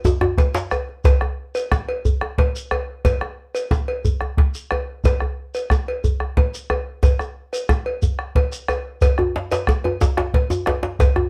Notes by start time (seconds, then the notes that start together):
0.05 djembe tone, djembe bass, shekere
0.21 bombo rim, djembe slap, djembe tone
0.38 bombo rim, bombo low, cowbell, djembe slap, shekere
0.54 bombo rim, djembe slap, shekere
0.71 bombo rim, cowbell, djembe tone, shekere
0.89 djembe slap
1.04 bombo low, cowbell, djembe slap, djembe bass, shekere
1.21 bombo rim, djembe tone
1.55 cowbell, shekere
1.72 bombo rim, bombo low, djembe slap, djembe tone, shekere
1.89 cowbell, djembe slap
2.05 djembe bass, shekere
2.21 bombo rim, djembe tone
2.38 bombo low, cowbell, djembe slap
2.55 djembe slap, shekere
2.71 bombo rim, cowbell, djembe tone
3.05 bombo low, cowbell, djembe slap, djembe bass, shekere
3.21 bombo rim, djembe tone
3.55 cowbell, shekere
3.71 bombo low, djembe slap, djembe tone, shekere
3.88 cowbell, djembe slap
4.05 djembe bass, shekere
4.21 bombo rim, djembe tone
4.37 bombo low, djembe slap
4.55 djembe slap, shekere
4.71 bombo rim, cowbell, djembe tone
5.04 bombo low, cowbell, djembe slap, djembe bass, shekere
5.20 bombo rim, djembe tone
5.55 cowbell, shekere
5.70 bombo rim, bombo low, djembe slap, djembe tone, shekere
5.88 cowbell, djembe slap
6.04 djembe bass, shekere
6.20 bombo rim, djembe tone
6.37 bombo low, cowbell, djembe slap
6.54 djembe slap, shekere
6.70 bombo rim, cowbell, djembe tone
7.03 bombo low, cowbell, djembe slap, djembe bass, shekere
7.19 bombo rim, djembe tone, shekere
7.53 bombo rim, cowbell, shekere
7.69 bombo rim, bombo low, djembe slap, djembe tone, shekere
7.86 cowbell
8.02 djembe slap, djembe bass, shekere
8.19 bombo rim, djembe slap
8.35 bombo low, cowbell, djembe slap
8.52 bombo rim, shekere
8.68 bombo rim, cowbell, djembe tone, shekere
9.01 bombo low, cowbell, djembe slap, djembe bass, shekere
9.18 bombo rim, djembe tone
9.36 djembe slap
9.52 cowbell, djembe slap, shekere
9.67 bombo rim, bombo low, djembe slap, djembe tone, shekere
9.84 cowbell, djembe slap, djembe tone
10.01 djembe slap, djembe bass, shekere
10.17 bombo rim, djembe slap, djembe tone
10.34 bombo low, cowbell, djembe slap
10.50 djembe tone, shekere
10.66 bombo rim, cowbell, djembe slap, djembe tone
10.83 djembe slap
10.99 bombo low, cowbell, djembe slap, djembe bass, shekere
11.16 bombo rim, djembe tone